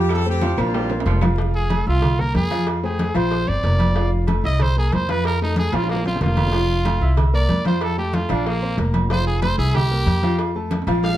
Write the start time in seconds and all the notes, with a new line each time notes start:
Already playing: F2 F3 F4 F5
0.09 G3 C4 A4, cowbell, high conga, low agogo, claves
0.25 A3 C4 G4 A4 C5, high conga
0.41 F3 F4 F5, cowbell, high bongo, high conga, low agogo
0.57 A#1 A#3 C4 D4 F4 A#4 C5, cowbell, high bongo, high conga, low agogo, claves
0.74 G3, cowbell, high bongo, high conga
0.90 A#3 A#4 C5, low bongo, high conga, high timbale, low agogo
1.00 high timbale
1.06 F1 F3, cowbell, low bongo, high conga, low agogo
1.11 low timbale
1.21 F3 F4 F5, cowbell, low bongo, high conga, low timbale, low agogo, claves
1.38 F3 F4 F5, cowbell, high conga, low agogo
1.54 G#4, high conga
1.70 A3 A4 A5, cowbell, high conga, low agogo
1.87 C2 F4 E5 E6
2.02 cowbell, high conga, low conga, low agogo
2.19 A#3 A#4 A#5, high conga, low conga
2.34 F2 G#4, cowbell, high conga, low timbale, low agogo
2.50 F3 F4 F5, cowbell, high conga, low agogo
2.67 cowbell, high conga, low agogo
2.83 A3 G#4 C5 G5, high conga
2.99 cowbell, high conga, low agogo
3.14 A#1 F3 F4 C5 F5, cowbell, high conga, low agogo
3.31 cowbell, high conga
3.47 G1 C4 C5 D5 C6, high conga, low agogo
3.63 F1 A#3 A#4 A#5, cowbell, high conga, low agogo
3.79 cowbell, high conga, low agogo
3.95 F3 F4 F5, cowbell, high conga, low agogo
4.12 high conga
4.27 A3 A4 A5, cowbell, high conga, low agogo
4.44 C2 E4 D#5 E5 E6
4.60 C5, cowbell, high conga, low conga, low agogo
4.76 A#3 G#4 A#4 A#5, high conga
4.92 F2 C5, cowbell, high conga, low timbale, low agogo
5.08 F3 F4 B4 F5, cowbell, high conga, low agogo
5.24 A#4, cowbell, low agogo
5.40 A3 D#4 A4 A5, high conga
5.56 G#4, cowbell, high conga, low agogo
5.72 A#1 F3 F4 F5, cowbell, high bongo, high conga, low agogo
5.84 high bongo
5.89 A#3, cowbell, high conga
5.95 high bongo
6.05 C4 F4 C5 C6, low bongo, high conga, low agogo
6.16 low bongo
6.21 F1 A#3 F4 A#4 A#5, cowbell, low conga, low agogo
6.26 low bongo
6.37 cowbell, low bongo, low conga, low agogo
6.47 low bongo
6.52 F3 F4 F5, cowbell, high conga, low agogo
6.69 high conga
6.85 A3 A4 A5, cowbell, high conga, low agogo
7.00 C2 E4 E5 E6
7.17 cowbell, high conga, low conga, low agogo
7.33 A#3 A#4 D5 A#5, high conga
7.49 F2, cowbell, high conga, low timbale, low agogo
7.65 F3 F4 C5 F5, cowbell, high conga, low agogo
7.81 A4, cowbell, low agogo
7.98 A3 G4 A4 A5, high conga
8.13 F4, cowbell, high conga, low agogo
8.29 A#1 F3 D4 F4 F5, cowbell, low agogo
8.46 A#3, cowbell, high conga
8.61 C4 C5 C6, high conga, low agogo
8.78 F1 A#3 A#4 A#5, cowbell, high conga, low timbale, low agogo
8.94 cowbell, high conga, low agogo
9.10 F3 F4 C5 F5, cowbell, high conga, low agogo
9.26 G#4, high conga
9.42 A3 A4 C5 A5, cowbell, high conga, low agogo
9.58 C2 E4 G#4 E5 E6
9.74 G4, cowbell, high conga, low conga, low agogo
9.91 A#3 A#4 A#5, high conga
10.06 F2, cowbell, high conga, low agogo
10.23 F3 F4 F5, cowbell, high conga, low agogo
10.38 cowbell, high conga, low agogo
10.55 A3 A4 A5, high conga
10.71 cowbell, high conga, high timbale, low agogo
10.82 high timbale
10.87 A#1 F3 F4 F5, cowbell, high conga, low agogo
10.92 high timbale
11.03 F5, cowbell, high conga, low timbale
11.14 low timbale